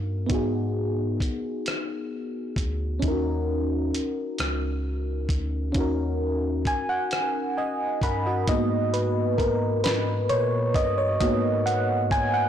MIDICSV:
0, 0, Header, 1, 4, 480
1, 0, Start_track
1, 0, Key_signature, 5, "minor"
1, 0, Tempo, 909091
1, 155, Time_signature, 6, 3, 24, 8
1, 6594, End_track
2, 0, Start_track
2, 0, Title_t, "FM electric piano"
2, 0, Program_c, 0, 5
2, 0, Control_c, 0, 64, 127
2, 0, Note_on_c, 0, 59, 56
2, 0, Note_on_c, 0, 63, 49
2, 0, Note_on_c, 0, 66, 50
2, 0, Note_on_c, 0, 70, 62
2, 126, Note_off_c, 0, 59, 0
2, 134, Note_off_c, 0, 63, 0
2, 140, Note_on_c, 0, 59, 57
2, 141, Note_off_c, 0, 66, 0
2, 148, Note_off_c, 0, 70, 0
2, 152, Note_on_c, 0, 63, 49
2, 167, Note_on_c, 0, 66, 60
2, 182, Note_on_c, 0, 68, 58
2, 1566, Note_off_c, 0, 59, 0
2, 1572, Note_off_c, 0, 63, 0
2, 1580, Note_off_c, 0, 66, 0
2, 1581, Note_on_c, 0, 61, 65
2, 1587, Note_off_c, 0, 68, 0
2, 1596, Note_on_c, 0, 63, 53
2, 1602, Control_c, 0, 64, 0
2, 1610, Note_on_c, 0, 64, 42
2, 1625, Note_on_c, 0, 70, 65
2, 1637, Note_off_c, 0, 64, 0
2, 1646, Note_on_c, 0, 66, 58
2, 1682, Control_c, 0, 64, 127
2, 3007, Note_off_c, 0, 61, 0
2, 3014, Note_off_c, 0, 63, 0
2, 3022, Note_on_c, 0, 61, 59
2, 3029, Note_off_c, 0, 70, 0
2, 3035, Note_on_c, 0, 63, 49
2, 3039, Note_off_c, 0, 66, 0
2, 3051, Note_on_c, 0, 66, 59
2, 3065, Note_on_c, 0, 70, 68
2, 3523, Note_on_c, 0, 80, 93
2, 3639, Note_on_c, 0, 78, 85
2, 3643, Note_off_c, 0, 80, 0
2, 3749, Note_off_c, 0, 66, 0
2, 3756, Note_off_c, 0, 70, 0
2, 3999, Note_on_c, 0, 80, 59
2, 4001, Note_on_c, 0, 75, 70
2, 4222, Note_off_c, 0, 75, 0
2, 4225, Note_off_c, 0, 80, 0
2, 4236, Note_off_c, 0, 78, 0
2, 4240, Note_on_c, 0, 83, 63
2, 4242, Note_on_c, 0, 78, 59
2, 4244, Note_on_c, 0, 70, 53
2, 4353, Note_off_c, 0, 78, 0
2, 4354, Note_off_c, 0, 70, 0
2, 4362, Note_on_c, 0, 75, 55
2, 4366, Note_on_c, 0, 66, 48
2, 4447, Note_off_c, 0, 61, 0
2, 4454, Note_off_c, 0, 63, 0
2, 4461, Note_off_c, 0, 83, 0
2, 4476, Note_off_c, 0, 75, 0
2, 4479, Note_off_c, 0, 66, 0
2, 4481, Note_on_c, 0, 58, 47
2, 4482, Note_on_c, 0, 75, 92
2, 4483, Control_c, 0, 64, 0
2, 4483, Note_on_c, 0, 59, 45
2, 4486, Note_on_c, 0, 66, 55
2, 4569, Control_c, 0, 64, 127
2, 4702, Note_off_c, 0, 75, 0
2, 4718, Note_on_c, 0, 71, 81
2, 4797, Note_off_c, 0, 58, 0
2, 4799, Note_off_c, 0, 59, 0
2, 4800, Note_off_c, 0, 66, 0
2, 4952, Note_on_c, 0, 70, 80
2, 4964, Note_off_c, 0, 71, 0
2, 5177, Note_off_c, 0, 70, 0
2, 5196, Note_on_c, 0, 71, 93
2, 5436, Note_on_c, 0, 73, 98
2, 5443, Note_off_c, 0, 71, 0
2, 5677, Note_on_c, 0, 75, 97
2, 5683, Note_off_c, 0, 73, 0
2, 5788, Note_off_c, 0, 75, 0
2, 5796, Note_on_c, 0, 73, 81
2, 5916, Note_on_c, 0, 58, 52
2, 5916, Note_on_c, 0, 75, 97
2, 5919, Note_off_c, 0, 73, 0
2, 5919, Note_on_c, 0, 59, 45
2, 5921, Note_on_c, 0, 66, 59
2, 6156, Note_on_c, 0, 78, 88
2, 6163, Note_off_c, 0, 75, 0
2, 6235, Note_off_c, 0, 58, 0
2, 6236, Note_off_c, 0, 59, 0
2, 6238, Note_off_c, 0, 66, 0
2, 6379, Note_off_c, 0, 78, 0
2, 6397, Note_on_c, 0, 80, 97
2, 6508, Note_off_c, 0, 80, 0
2, 6514, Note_on_c, 0, 78, 97
2, 6594, Note_off_c, 0, 78, 0
2, 6594, End_track
3, 0, Start_track
3, 0, Title_t, "Tine electric piano"
3, 0, Program_c, 1, 4
3, 0, Note_on_c, 1, 43, 78
3, 135, Note_off_c, 1, 43, 0
3, 161, Note_on_c, 1, 44, 95
3, 617, Note_off_c, 1, 44, 0
3, 1356, Note_on_c, 1, 38, 79
3, 1574, Note_off_c, 1, 38, 0
3, 1599, Note_on_c, 1, 39, 99
3, 2056, Note_off_c, 1, 39, 0
3, 2325, Note_on_c, 1, 37, 83
3, 2779, Note_off_c, 1, 37, 0
3, 2795, Note_on_c, 1, 38, 79
3, 3014, Note_off_c, 1, 38, 0
3, 3037, Note_on_c, 1, 39, 90
3, 3495, Note_off_c, 1, 39, 0
3, 3516, Note_on_c, 1, 43, 42
3, 3564, Note_off_c, 1, 43, 0
3, 4235, Note_on_c, 1, 43, 75
3, 4454, Note_off_c, 1, 43, 0
3, 4480, Note_on_c, 1, 44, 121
3, 5438, Note_off_c, 1, 44, 0
3, 5441, Note_on_c, 1, 46, 85
3, 5657, Note_off_c, 1, 46, 0
3, 5676, Note_on_c, 1, 43, 93
3, 5895, Note_off_c, 1, 43, 0
3, 5919, Note_on_c, 1, 44, 112
3, 6594, Note_off_c, 1, 44, 0
3, 6594, End_track
4, 0, Start_track
4, 0, Title_t, "Drums"
4, 156, Note_on_c, 9, 42, 65
4, 157, Note_on_c, 9, 36, 104
4, 209, Note_off_c, 9, 42, 0
4, 210, Note_off_c, 9, 36, 0
4, 636, Note_on_c, 9, 36, 87
4, 644, Note_on_c, 9, 42, 67
4, 688, Note_off_c, 9, 36, 0
4, 696, Note_off_c, 9, 42, 0
4, 876, Note_on_c, 9, 42, 58
4, 886, Note_on_c, 9, 37, 84
4, 929, Note_off_c, 9, 42, 0
4, 939, Note_off_c, 9, 37, 0
4, 1353, Note_on_c, 9, 36, 88
4, 1362, Note_on_c, 9, 42, 59
4, 1406, Note_off_c, 9, 36, 0
4, 1414, Note_off_c, 9, 42, 0
4, 1596, Note_on_c, 9, 42, 63
4, 1597, Note_on_c, 9, 36, 104
4, 1649, Note_off_c, 9, 42, 0
4, 1650, Note_off_c, 9, 36, 0
4, 2083, Note_on_c, 9, 42, 63
4, 2136, Note_off_c, 9, 42, 0
4, 2315, Note_on_c, 9, 42, 61
4, 2325, Note_on_c, 9, 37, 83
4, 2368, Note_off_c, 9, 42, 0
4, 2378, Note_off_c, 9, 37, 0
4, 2792, Note_on_c, 9, 36, 86
4, 2799, Note_on_c, 9, 42, 59
4, 2845, Note_off_c, 9, 36, 0
4, 2851, Note_off_c, 9, 42, 0
4, 3033, Note_on_c, 9, 42, 63
4, 3035, Note_on_c, 9, 36, 106
4, 3086, Note_off_c, 9, 42, 0
4, 3088, Note_off_c, 9, 36, 0
4, 3513, Note_on_c, 9, 36, 86
4, 3520, Note_on_c, 9, 42, 61
4, 3566, Note_off_c, 9, 36, 0
4, 3573, Note_off_c, 9, 42, 0
4, 3754, Note_on_c, 9, 42, 52
4, 3764, Note_on_c, 9, 37, 83
4, 3807, Note_off_c, 9, 42, 0
4, 3816, Note_off_c, 9, 37, 0
4, 4232, Note_on_c, 9, 36, 86
4, 4239, Note_on_c, 9, 42, 61
4, 4285, Note_off_c, 9, 36, 0
4, 4292, Note_off_c, 9, 42, 0
4, 4475, Note_on_c, 9, 36, 120
4, 4475, Note_on_c, 9, 42, 84
4, 4528, Note_off_c, 9, 36, 0
4, 4528, Note_off_c, 9, 42, 0
4, 4719, Note_on_c, 9, 42, 47
4, 4772, Note_off_c, 9, 42, 0
4, 4954, Note_on_c, 9, 36, 90
4, 4961, Note_on_c, 9, 42, 47
4, 5007, Note_off_c, 9, 36, 0
4, 5014, Note_off_c, 9, 42, 0
4, 5195, Note_on_c, 9, 42, 66
4, 5205, Note_on_c, 9, 38, 100
4, 5248, Note_off_c, 9, 42, 0
4, 5258, Note_off_c, 9, 38, 0
4, 5435, Note_on_c, 9, 42, 45
4, 5488, Note_off_c, 9, 42, 0
4, 5673, Note_on_c, 9, 36, 104
4, 5680, Note_on_c, 9, 42, 57
4, 5726, Note_off_c, 9, 36, 0
4, 5732, Note_off_c, 9, 42, 0
4, 5916, Note_on_c, 9, 42, 89
4, 5917, Note_on_c, 9, 36, 114
4, 5969, Note_off_c, 9, 36, 0
4, 5969, Note_off_c, 9, 42, 0
4, 6161, Note_on_c, 9, 42, 49
4, 6214, Note_off_c, 9, 42, 0
4, 6394, Note_on_c, 9, 36, 105
4, 6401, Note_on_c, 9, 42, 53
4, 6447, Note_off_c, 9, 36, 0
4, 6454, Note_off_c, 9, 42, 0
4, 6594, End_track
0, 0, End_of_file